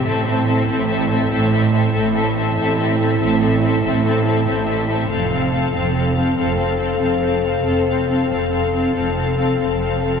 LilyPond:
<<
  \new Staff \with { instrumentName = "Violin section" } { \time 12/8 \key f \major \tempo 4. = 95 e''8 e''8 e''8 e''8 e''8 e''8 e''8 e''8 e''8 e''8 e''8 e''8 | e''8 e''8 e''8 e''8 e''8 e''8 e''8 e''8 e''8 e''8 e''8 e''8 | f''8 f''8 f''8 f''8 f''8 f''8 f''8 f''8 f''8 f''8 f''8 f''8 | f''8 f''8 f''8 f''8 f''8 f''8 f''8 f''8 f''8 f''8 f''8 f''8 | }
  \new Staff \with { instrumentName = "Violin section" } { \time 12/8 \key f \major a'8 a'8 a'8 a'8 a'8 a'8 a'8 a'8 a'8 a'8 a'8 a'8 | a'8 a'8 a'8 a'8 a'8 a'8 a'8 a'8 a'8 a'8 a'8 a'8 | a'8 a'8 a'8 a'8 a'8 a'8 a'8 a'8 a'8 a'8 a'8 a'8 | a'8 a'8 a'8 a'8 a'8 a'8 a'8 a'8 a'8 a'8 a'8 a'8 | }
  \new Staff \with { instrumentName = "French horn section" } { \time 12/8 \key f \major <c' e'>1.~ | <c' e'>1. | <c' a'>1.~ | <c' a'>1~ <c' a'>4. r8 | }
  \new Staff \with { instrumentName = "Viola section" } { \time 12/8 \key f \major c'8 c'8 c'8 c'8 c'8 c'8 c'8 c'8 c'8 c'8 c'8 c'8 | c'8 c'8 c'8 c'8 c'8 c'8 c'8 c'8 c'8 c'8 c'8 c'8 | c'8 c'8 c'8 c'8 c'8 c'8 c'8 c'8 c'8 c'8 c'8 c'8 | c'8 c'8 c'8 c'8 c'8 c'8 c'8 c'8 c'8 c'8 c'8 c'8 | }
  \new Staff \with { instrumentName = "Cello section" } { \clef bass \time 12/8 \key f \major a,4. a,4. a,4. a,4. | a,4. a,4. a,4. a,4. | f,4. f,4. f,4. f,4. | f,4. f,4. f,4. f,4. | }
  \new Staff \with { instrumentName = "Double bass section" } { \clef bass \time 12/8 \key f \major a,,4. a,,4. a,,4. a,,4. | a,,4. a,,4. a,,4. a,,4. | f,,4. f,,4. f,,4. f,,4. | f,,4. f,,4. f,,4. f,,4. | }
>>